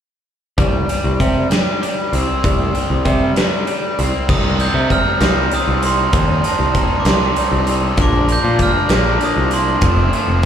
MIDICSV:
0, 0, Header, 1, 5, 480
1, 0, Start_track
1, 0, Tempo, 616650
1, 454, Time_signature, 6, 3, 24, 8
1, 8138, End_track
2, 0, Start_track
2, 0, Title_t, "Glockenspiel"
2, 0, Program_c, 0, 9
2, 3342, Note_on_c, 0, 87, 78
2, 3587, Note_off_c, 0, 87, 0
2, 3589, Note_on_c, 0, 91, 89
2, 3828, Note_on_c, 0, 89, 86
2, 3831, Note_off_c, 0, 91, 0
2, 4271, Note_off_c, 0, 89, 0
2, 4315, Note_on_c, 0, 87, 75
2, 4553, Note_off_c, 0, 87, 0
2, 4558, Note_on_c, 0, 84, 93
2, 5022, Note_on_c, 0, 81, 82
2, 5041, Note_off_c, 0, 84, 0
2, 5266, Note_off_c, 0, 81, 0
2, 5266, Note_on_c, 0, 82, 70
2, 5447, Note_on_c, 0, 86, 63
2, 5452, Note_off_c, 0, 82, 0
2, 5499, Note_off_c, 0, 86, 0
2, 5518, Note_on_c, 0, 84, 80
2, 6015, Note_off_c, 0, 84, 0
2, 6236, Note_on_c, 0, 86, 85
2, 6472, Note_off_c, 0, 86, 0
2, 6479, Note_on_c, 0, 91, 97
2, 6690, Note_off_c, 0, 91, 0
2, 6714, Note_on_c, 0, 89, 85
2, 7152, Note_off_c, 0, 89, 0
2, 7189, Note_on_c, 0, 87, 73
2, 7423, Note_on_c, 0, 84, 81
2, 7427, Note_off_c, 0, 87, 0
2, 7904, Note_on_c, 0, 81, 69
2, 7911, Note_off_c, 0, 84, 0
2, 8138, Note_off_c, 0, 81, 0
2, 8138, End_track
3, 0, Start_track
3, 0, Title_t, "Overdriven electric guitar"
3, 0, Program_c, 1, 29
3, 461, Note_on_c, 1, 55, 55
3, 699, Note_off_c, 1, 55, 0
3, 703, Note_on_c, 1, 55, 52
3, 940, Note_off_c, 1, 55, 0
3, 943, Note_on_c, 1, 55, 50
3, 1172, Note_off_c, 1, 55, 0
3, 1181, Note_on_c, 1, 55, 51
3, 1409, Note_off_c, 1, 55, 0
3, 1418, Note_on_c, 1, 55, 55
3, 1665, Note_on_c, 1, 60, 57
3, 1889, Note_off_c, 1, 55, 0
3, 1898, Note_on_c, 1, 55, 56
3, 2130, Note_off_c, 1, 55, 0
3, 2139, Note_on_c, 1, 55, 55
3, 2371, Note_off_c, 1, 55, 0
3, 2380, Note_on_c, 1, 55, 61
3, 2618, Note_off_c, 1, 55, 0
3, 2627, Note_on_c, 1, 55, 57
3, 2855, Note_off_c, 1, 55, 0
3, 2862, Note_off_c, 1, 60, 0
3, 2864, Note_on_c, 1, 55, 56
3, 3105, Note_on_c, 1, 60, 61
3, 3333, Note_off_c, 1, 55, 0
3, 3342, Note_off_c, 1, 60, 0
3, 3343, Note_on_c, 1, 55, 73
3, 3350, Note_on_c, 1, 60, 73
3, 3352, Note_on_c, 1, 63, 77
3, 3577, Note_off_c, 1, 55, 0
3, 3580, Note_on_c, 1, 55, 62
3, 3582, Note_off_c, 1, 60, 0
3, 3584, Note_off_c, 1, 63, 0
3, 3585, Note_on_c, 1, 60, 77
3, 3587, Note_on_c, 1, 63, 73
3, 3811, Note_off_c, 1, 55, 0
3, 3814, Note_on_c, 1, 55, 69
3, 3820, Note_off_c, 1, 60, 0
3, 3823, Note_off_c, 1, 63, 0
3, 3823, Note_on_c, 1, 60, 78
3, 3826, Note_on_c, 1, 63, 85
3, 4045, Note_off_c, 1, 55, 0
3, 4052, Note_off_c, 1, 60, 0
3, 4054, Note_on_c, 1, 55, 74
3, 4056, Note_off_c, 1, 63, 0
3, 4062, Note_on_c, 1, 60, 72
3, 4066, Note_on_c, 1, 63, 85
3, 4293, Note_off_c, 1, 55, 0
3, 4298, Note_off_c, 1, 60, 0
3, 4302, Note_on_c, 1, 55, 68
3, 4303, Note_off_c, 1, 63, 0
3, 4308, Note_on_c, 1, 60, 79
3, 4313, Note_on_c, 1, 63, 70
3, 4530, Note_off_c, 1, 55, 0
3, 4533, Note_off_c, 1, 60, 0
3, 4538, Note_off_c, 1, 63, 0
3, 4539, Note_on_c, 1, 55, 69
3, 4542, Note_on_c, 1, 60, 80
3, 4547, Note_on_c, 1, 63, 83
3, 4773, Note_off_c, 1, 55, 0
3, 4780, Note_off_c, 1, 60, 0
3, 4783, Note_on_c, 1, 55, 81
3, 4784, Note_off_c, 1, 63, 0
3, 4789, Note_on_c, 1, 60, 88
3, 4793, Note_on_c, 1, 63, 83
3, 5016, Note_off_c, 1, 55, 0
3, 5023, Note_off_c, 1, 60, 0
3, 5025, Note_off_c, 1, 63, 0
3, 5025, Note_on_c, 1, 55, 69
3, 5032, Note_on_c, 1, 60, 75
3, 5034, Note_on_c, 1, 63, 80
3, 5254, Note_off_c, 1, 55, 0
3, 5259, Note_off_c, 1, 60, 0
3, 5263, Note_on_c, 1, 55, 74
3, 5265, Note_off_c, 1, 63, 0
3, 5268, Note_on_c, 1, 60, 76
3, 5274, Note_on_c, 1, 63, 87
3, 5487, Note_off_c, 1, 55, 0
3, 5495, Note_off_c, 1, 60, 0
3, 5496, Note_on_c, 1, 55, 70
3, 5500, Note_off_c, 1, 63, 0
3, 5504, Note_on_c, 1, 60, 70
3, 5510, Note_on_c, 1, 63, 82
3, 5725, Note_off_c, 1, 55, 0
3, 5731, Note_off_c, 1, 60, 0
3, 5734, Note_off_c, 1, 63, 0
3, 5734, Note_on_c, 1, 55, 60
3, 5740, Note_on_c, 1, 60, 67
3, 5744, Note_on_c, 1, 63, 85
3, 5962, Note_off_c, 1, 55, 0
3, 5967, Note_off_c, 1, 60, 0
3, 5972, Note_off_c, 1, 63, 0
3, 5972, Note_on_c, 1, 55, 64
3, 5977, Note_on_c, 1, 60, 77
3, 5981, Note_on_c, 1, 63, 87
3, 6199, Note_off_c, 1, 55, 0
3, 6201, Note_off_c, 1, 60, 0
3, 6203, Note_off_c, 1, 63, 0
3, 6208, Note_on_c, 1, 53, 79
3, 6215, Note_on_c, 1, 58, 84
3, 6223, Note_on_c, 1, 62, 84
3, 6447, Note_off_c, 1, 53, 0
3, 6449, Note_off_c, 1, 58, 0
3, 6450, Note_on_c, 1, 53, 71
3, 6457, Note_off_c, 1, 62, 0
3, 6458, Note_on_c, 1, 58, 74
3, 6466, Note_on_c, 1, 62, 66
3, 6688, Note_off_c, 1, 58, 0
3, 6692, Note_off_c, 1, 53, 0
3, 6694, Note_off_c, 1, 62, 0
3, 6695, Note_on_c, 1, 53, 71
3, 6697, Note_on_c, 1, 58, 80
3, 6704, Note_on_c, 1, 62, 83
3, 6920, Note_off_c, 1, 53, 0
3, 6927, Note_off_c, 1, 58, 0
3, 6930, Note_on_c, 1, 53, 67
3, 6934, Note_off_c, 1, 62, 0
3, 6937, Note_on_c, 1, 58, 79
3, 6943, Note_on_c, 1, 62, 71
3, 7164, Note_off_c, 1, 53, 0
3, 7166, Note_off_c, 1, 58, 0
3, 7170, Note_off_c, 1, 62, 0
3, 7173, Note_on_c, 1, 53, 66
3, 7175, Note_on_c, 1, 58, 79
3, 7179, Note_on_c, 1, 62, 76
3, 7398, Note_off_c, 1, 53, 0
3, 7403, Note_off_c, 1, 58, 0
3, 7407, Note_on_c, 1, 53, 78
3, 7408, Note_off_c, 1, 62, 0
3, 7412, Note_on_c, 1, 58, 75
3, 7418, Note_on_c, 1, 62, 77
3, 7635, Note_off_c, 1, 53, 0
3, 7637, Note_off_c, 1, 58, 0
3, 7640, Note_off_c, 1, 62, 0
3, 7643, Note_on_c, 1, 53, 77
3, 7650, Note_on_c, 1, 57, 72
3, 7655, Note_on_c, 1, 60, 86
3, 7883, Note_off_c, 1, 53, 0
3, 7889, Note_off_c, 1, 57, 0
3, 7892, Note_on_c, 1, 53, 73
3, 7899, Note_on_c, 1, 57, 66
3, 7902, Note_off_c, 1, 60, 0
3, 7905, Note_on_c, 1, 60, 76
3, 8115, Note_off_c, 1, 53, 0
3, 8121, Note_off_c, 1, 57, 0
3, 8133, Note_off_c, 1, 60, 0
3, 8138, End_track
4, 0, Start_track
4, 0, Title_t, "Picked electric bass"
4, 0, Program_c, 2, 34
4, 448, Note_on_c, 2, 36, 73
4, 655, Note_off_c, 2, 36, 0
4, 811, Note_on_c, 2, 36, 63
4, 915, Note_off_c, 2, 36, 0
4, 934, Note_on_c, 2, 48, 72
4, 1138, Note_off_c, 2, 48, 0
4, 1655, Note_on_c, 2, 36, 67
4, 1757, Note_off_c, 2, 36, 0
4, 1901, Note_on_c, 2, 36, 83
4, 2103, Note_off_c, 2, 36, 0
4, 2257, Note_on_c, 2, 36, 71
4, 2359, Note_off_c, 2, 36, 0
4, 2375, Note_on_c, 2, 48, 83
4, 2580, Note_off_c, 2, 48, 0
4, 3103, Note_on_c, 2, 36, 66
4, 3203, Note_off_c, 2, 36, 0
4, 3336, Note_on_c, 2, 36, 76
4, 3642, Note_off_c, 2, 36, 0
4, 3691, Note_on_c, 2, 48, 69
4, 3897, Note_off_c, 2, 48, 0
4, 4053, Note_on_c, 2, 36, 88
4, 4258, Note_off_c, 2, 36, 0
4, 4417, Note_on_c, 2, 36, 73
4, 4722, Note_off_c, 2, 36, 0
4, 4772, Note_on_c, 2, 39, 87
4, 4977, Note_off_c, 2, 39, 0
4, 5128, Note_on_c, 2, 36, 70
4, 5334, Note_off_c, 2, 36, 0
4, 5488, Note_on_c, 2, 36, 89
4, 5694, Note_off_c, 2, 36, 0
4, 5850, Note_on_c, 2, 36, 70
4, 6156, Note_off_c, 2, 36, 0
4, 6206, Note_on_c, 2, 34, 85
4, 6514, Note_off_c, 2, 34, 0
4, 6569, Note_on_c, 2, 46, 72
4, 6774, Note_off_c, 2, 46, 0
4, 6924, Note_on_c, 2, 34, 94
4, 7131, Note_off_c, 2, 34, 0
4, 7290, Note_on_c, 2, 36, 68
4, 7595, Note_off_c, 2, 36, 0
4, 7641, Note_on_c, 2, 29, 84
4, 7848, Note_off_c, 2, 29, 0
4, 8003, Note_on_c, 2, 29, 70
4, 8138, Note_off_c, 2, 29, 0
4, 8138, End_track
5, 0, Start_track
5, 0, Title_t, "Drums"
5, 451, Note_on_c, 9, 36, 91
5, 451, Note_on_c, 9, 42, 63
5, 529, Note_off_c, 9, 36, 0
5, 529, Note_off_c, 9, 42, 0
5, 694, Note_on_c, 9, 42, 52
5, 772, Note_off_c, 9, 42, 0
5, 934, Note_on_c, 9, 36, 55
5, 934, Note_on_c, 9, 42, 47
5, 1012, Note_off_c, 9, 36, 0
5, 1012, Note_off_c, 9, 42, 0
5, 1174, Note_on_c, 9, 42, 75
5, 1183, Note_on_c, 9, 38, 104
5, 1252, Note_off_c, 9, 42, 0
5, 1261, Note_off_c, 9, 38, 0
5, 1424, Note_on_c, 9, 42, 57
5, 1502, Note_off_c, 9, 42, 0
5, 1660, Note_on_c, 9, 42, 53
5, 1738, Note_off_c, 9, 42, 0
5, 1899, Note_on_c, 9, 42, 75
5, 1900, Note_on_c, 9, 36, 83
5, 1977, Note_off_c, 9, 36, 0
5, 1977, Note_off_c, 9, 42, 0
5, 2139, Note_on_c, 9, 42, 50
5, 2216, Note_off_c, 9, 42, 0
5, 2376, Note_on_c, 9, 42, 49
5, 2378, Note_on_c, 9, 36, 61
5, 2454, Note_off_c, 9, 42, 0
5, 2456, Note_off_c, 9, 36, 0
5, 2618, Note_on_c, 9, 42, 72
5, 2627, Note_on_c, 9, 38, 102
5, 2696, Note_off_c, 9, 42, 0
5, 2705, Note_off_c, 9, 38, 0
5, 2859, Note_on_c, 9, 42, 55
5, 2937, Note_off_c, 9, 42, 0
5, 3104, Note_on_c, 9, 42, 53
5, 3182, Note_off_c, 9, 42, 0
5, 3339, Note_on_c, 9, 36, 88
5, 3340, Note_on_c, 9, 49, 83
5, 3417, Note_off_c, 9, 36, 0
5, 3418, Note_off_c, 9, 49, 0
5, 3578, Note_on_c, 9, 42, 52
5, 3656, Note_off_c, 9, 42, 0
5, 3817, Note_on_c, 9, 36, 59
5, 3818, Note_on_c, 9, 42, 50
5, 3894, Note_off_c, 9, 36, 0
5, 3896, Note_off_c, 9, 42, 0
5, 4052, Note_on_c, 9, 42, 75
5, 4061, Note_on_c, 9, 38, 106
5, 4130, Note_off_c, 9, 42, 0
5, 4139, Note_off_c, 9, 38, 0
5, 4293, Note_on_c, 9, 42, 50
5, 4371, Note_off_c, 9, 42, 0
5, 4534, Note_on_c, 9, 42, 56
5, 4612, Note_off_c, 9, 42, 0
5, 4771, Note_on_c, 9, 42, 82
5, 4773, Note_on_c, 9, 36, 102
5, 4849, Note_off_c, 9, 42, 0
5, 4851, Note_off_c, 9, 36, 0
5, 5013, Note_on_c, 9, 42, 60
5, 5091, Note_off_c, 9, 42, 0
5, 5252, Note_on_c, 9, 36, 65
5, 5252, Note_on_c, 9, 42, 50
5, 5330, Note_off_c, 9, 36, 0
5, 5330, Note_off_c, 9, 42, 0
5, 5489, Note_on_c, 9, 42, 83
5, 5497, Note_on_c, 9, 38, 102
5, 5567, Note_off_c, 9, 42, 0
5, 5575, Note_off_c, 9, 38, 0
5, 5732, Note_on_c, 9, 42, 58
5, 5810, Note_off_c, 9, 42, 0
5, 5969, Note_on_c, 9, 42, 61
5, 6047, Note_off_c, 9, 42, 0
5, 6207, Note_on_c, 9, 42, 76
5, 6210, Note_on_c, 9, 36, 93
5, 6285, Note_off_c, 9, 42, 0
5, 6288, Note_off_c, 9, 36, 0
5, 6449, Note_on_c, 9, 42, 53
5, 6527, Note_off_c, 9, 42, 0
5, 6685, Note_on_c, 9, 42, 53
5, 6688, Note_on_c, 9, 36, 68
5, 6763, Note_off_c, 9, 42, 0
5, 6766, Note_off_c, 9, 36, 0
5, 6921, Note_on_c, 9, 42, 71
5, 6930, Note_on_c, 9, 38, 105
5, 6999, Note_off_c, 9, 42, 0
5, 7008, Note_off_c, 9, 38, 0
5, 7167, Note_on_c, 9, 42, 49
5, 7245, Note_off_c, 9, 42, 0
5, 7401, Note_on_c, 9, 42, 50
5, 7479, Note_off_c, 9, 42, 0
5, 7640, Note_on_c, 9, 42, 76
5, 7643, Note_on_c, 9, 36, 102
5, 7717, Note_off_c, 9, 42, 0
5, 7721, Note_off_c, 9, 36, 0
5, 7885, Note_on_c, 9, 42, 52
5, 7963, Note_off_c, 9, 42, 0
5, 8138, End_track
0, 0, End_of_file